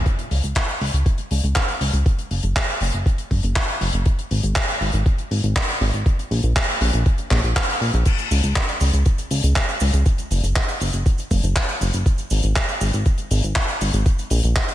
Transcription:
0.06 kick, closed hi-hat
0.19 closed hi-hat
0.31 analog synth bass C#2, open hi-hat
0.43 analog synth bass C#2, closed hi-hat
0.55 kick, clap, closed hi-hat
0.68 closed hi-hat
0.81 analog synth bass C#2, open hi-hat
0.93 analog synth bass C#2, closed hi-hat
1.06 kick, closed hi-hat
1.18 closed hi-hat
1.31 analog synth bass C#2, open hi-hat
1.43 analog synth bass C#2, closed hi-hat
1.56 kick, clap, closed hi-hat
1.68 closed hi-hat
1.81 analog synth bass C#2, open hi-hat
1.93 analog synth bass C#2, closed hi-hat
2.06 kick, closed hi-hat
2.19 closed hi-hat
2.31 analog synth bass F#1, open hi-hat
2.43 analog synth bass F#1, closed hi-hat
2.56 kick, clap, closed hi-hat
2.68 closed hi-hat
2.81 analog synth bass F#1, open hi-hat
2.92 analog synth bass F#1, closed hi-hat
3.06 kick, closed hi-hat
3.18 closed hi-hat
3.31 analog synth bass F#1, kick, open hi-hat
3.43 analog synth bass F#1, closed hi-hat
3.56 kick, clap, closed hi-hat
3.68 closed hi-hat
3.81 analog synth bass F#1, open hi-hat
3.93 analog synth bass F#1, closed hi-hat
4.06 kick, closed hi-hat
4.19 closed hi-hat
4.31 analog synth bass G#1, open hi-hat
4.43 analog synth bass G#1, closed hi-hat
4.56 kick, clap, closed hi-hat
4.68 closed hi-hat
4.81 analog synth bass G#1, open hi-hat
4.93 analog synth bass G#1, closed hi-hat
5.06 kick, closed hi-hat
5.18 closed hi-hat
5.31 analog synth bass G#1, open hi-hat
5.43 analog synth bass G#1, closed hi-hat
5.56 kick, clap
5.69 closed hi-hat
5.81 analog synth bass G#1, open hi-hat
5.93 analog synth bass G#1, closed hi-hat
6.06 kick, closed hi-hat
6.19 closed hi-hat
6.31 analog synth bass A#1, open hi-hat
6.43 analog synth bass A#1, closed hi-hat
6.56 kick, clap, closed hi-hat
6.68 closed hi-hat
6.81 analog synth bass A#1, open hi-hat
6.93 analog synth bass A#1, closed hi-hat
7.06 kick, closed hi-hat
7.18 closed hi-hat
7.31 analog synth bass A#1, kick, clap, open hi-hat
7.43 analog synth bass A#1, closed hi-hat
7.56 kick, clap
7.68 closed hi-hat
7.81 analog synth bass A#1, open hi-hat
7.94 analog synth bass A#1, closed hi-hat
8.05 kick, closed hi-hat, crash, cabasa
8.18 closed hi-hat, cabasa
8.31 analog synth bass C#2, open hi-hat, cabasa
8.43 analog synth bass C#2, closed hi-hat, cabasa
8.55 kick, clap, cabasa
8.68 closed hi-hat, cabasa
8.80 analog synth bass C#2, open hi-hat, cabasa
8.93 analog synth bass C#2, closed hi-hat, cabasa
9.06 kick, closed hi-hat, cabasa
9.18 closed hi-hat, cabasa
9.31 analog synth bass C#2, open hi-hat, cabasa
9.43 analog synth bass C#2, closed hi-hat, cabasa
9.56 kick, clap, cabasa
9.69 closed hi-hat, cabasa
9.80 analog synth bass C#2, open hi-hat, cabasa
9.93 analog synth bass C#2, closed hi-hat, cabasa
10.06 kick, closed hi-hat, cabasa
10.18 closed hi-hat, cabasa
10.31 analog synth bass F#1, open hi-hat, cabasa
10.43 analog synth bass F#1, closed hi-hat, cabasa
10.56 kick, clap, closed hi-hat, cabasa
10.68 closed hi-hat, cabasa
10.80 analog synth bass F#1, open hi-hat, cabasa
10.93 analog synth bass F#1, closed hi-hat, cabasa
11.06 kick, closed hi-hat, cabasa
11.18 closed hi-hat, cabasa
11.31 analog synth bass F#1, kick, open hi-hat, cabasa
11.43 analog synth bass F#1, closed hi-hat, cabasa
11.56 kick, clap, closed hi-hat, cabasa
11.68 closed hi-hat, cabasa
11.81 analog synth bass F#1, open hi-hat, cabasa
11.93 analog synth bass F#1, closed hi-hat, cabasa
12.06 kick, closed hi-hat, cabasa
12.18 closed hi-hat, cabasa
12.30 analog synth bass G#1, open hi-hat, cabasa
12.43 analog synth bass G#1, closed hi-hat, cabasa
12.56 kick, clap, cabasa
12.69 closed hi-hat, cabasa
12.81 analog synth bass G#1, open hi-hat, cabasa
12.93 analog synth bass G#1, closed hi-hat, cabasa
13.06 kick, closed hi-hat, cabasa
13.18 closed hi-hat, cabasa
13.31 analog synth bass G#1, open hi-hat, cabasa
13.43 analog synth bass G#1, closed hi-hat, cabasa
13.56 kick, clap
13.68 closed hi-hat, cabasa
13.81 analog synth bass G#1, open hi-hat, cabasa
13.93 analog synth bass G#1, closed hi-hat, cabasa
14.06 kick, closed hi-hat, cabasa
14.19 closed hi-hat, cabasa
14.30 analog synth bass A#1, open hi-hat, cabasa
14.43 analog synth bass A#1, closed hi-hat, cabasa
14.56 kick, clap, closed hi-hat, cabasa
14.68 closed hi-hat, cabasa

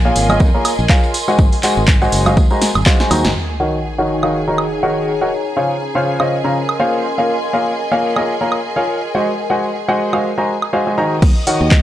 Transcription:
Already playing: string section G#4 G#5, ambient pad A#4 D#5 G#5 C6
0.05 grand piano A#3 F4 G#4 A#4 C#5 F5
0.16 fingered electric bass G#1, open hi-hat, tambourine
0.29 grand piano A#3 F4 G#4 A#4 C#5 D#5, tambourine, high conga, high woodblock
0.40 fingered electric bass F2, kick, tambourine
0.54 grand piano A#3 F4 G#4 A#4 C#5 A#5
0.65 open hi-hat, tambourine, high woodblock
0.79 fingered electric bass A#1, tambourine
0.89 grand piano F4 G#4 A#4 C#5 F5, kick, clap, tambourine
1.03 tambourine
1.14 open hi-hat, tambourine
1.28 grand piano G#3 F#4 G#4 C5 D#5 F#5, tambourine
1.39 fingered electric bass G#1, kick, tambourine
1.52 open hi-hat, tambourine
1.63 grand piano G#3 F#4 G#4 C5 D#5 F#5, clap, open hi-hat, tambourine
1.77 fingered electric bass G#1, tambourine
1.87 kick, clap, tambourine
2.02 grand piano G#3 F#4 G#4 C5 D#5 F#5, tambourine
2.12 fingered electric bass F#1, open hi-hat, tambourine
2.26 grand piano G#3 F#4 G#4 C5 D#5 F5, tambourine, high conga, high woodblock
2.37 fingered electric bass D#2, kick, tambourine
2.50 grand piano G#3 F#4 G#4 C5 D#5 A#5, tambourine
2.61 snare, open hi-hat, tambourine
2.75 fingered electric bass G#1, tambourine, high conga, high woodblock
2.86 grand piano G#3 F#4 G#4 C5 D#5 F5, kick, snare, clap, tambourine
3.00 grand piano G#3 F#4 G#4 C5 D#5 G#5, snare, tambourine
3.11 fingered electric bass D#2, grand piano D#3 F#4 G#4 C5 D#5 A#5, open hi-hat, tambourine, high conga, high woodblock
3.24 fingered electric bass G#1, snare, tambourine
3.35 ambient pad D#4, string section G#4 G#5, sub drop
3.59 grand piano D#3 F#4 A#4 C#5 D#5 F#5, ambient pad C#5 F#5
3.72 ambient pad G#4
3.83 ambient pad A#5
3.98 grand piano D#3 F#4 A#4 C#5 D#5 F#5
4.23 grand piano D#3 F#4 A#4 C#5 D#5 F5, high woodblock
4.48 grand piano D#3 F#4 A#4 C#5 D#5 A#5
4.58 high woodblock
4.83 grand piano D#3 F#4 A#4 C#5 D#5 F#5
5.21 grand piano F#4 A#4 C#5 D#5 F#5
5.33 ambient pad C#4
5.57 grand piano C#3 F4 G#4 C5 C#5 F5
5.68 ambient pad A#4
5.74 ambient pad D#5
5.95 grand piano C#3 F4 G#4 C5 C#5 F5
6.10 ambient pad G#5 C6
6.20 grand piano C#3 F4 G#4 C5 C#5 D#5, high woodblock
6.44 grand piano C#3 F4 G#4 C5 C#5 A#5
6.69 high woodblock
6.80 grand piano A#3 F4 G#4 C5 C#5 F5
7.18 grand piano A#3 F4 G#4 A#4 C#5 F5
7.53 grand piano A#3 F4 G#4 A#4 C#5 F5
7.92 grand piano A#3 F4 G#4 A#4 C#5 F5
8.16 grand piano A#3 F4 G#4 A#4 C#5 D#5, high woodblock
8.41 grand piano A#3 F4 G#4 A#4 C#5 A#5
8.52 high woodblock
8.76 grand piano F4 G#4 A#4 C#5 F5
9.15 grand piano G#3 F#4 G#4 C5 D#5 F#5
9.50 grand piano G#3 F#4 G#4 C5 D#5 F#5
9.88 grand piano G#3 F#4 G#4 C5 D#5 F#5
10.13 grand piano G#3 F#4 G#4 C5 D#5 F5, high woodblock
10.38 grand piano G#3 F#4 G#4 C5 D#5 A#5
10.62 high woodblock
10.73 grand piano G#3 F#4 G#4 C5 D#5 F5
10.87 grand piano G#3 F#4 G#4 C5 D#5 G#5
10.98 grand piano D#3 F#4 G#4 C5 D#5 A#5
11.22 fingered electric bass D#2, string section D#5 D#6, kick, crash
11.47 grand piano D#3 F#4 A#4 C#5 D#5 F#5, open hi-hat
11.61 fingered electric bass D#2
11.71 kick, clap

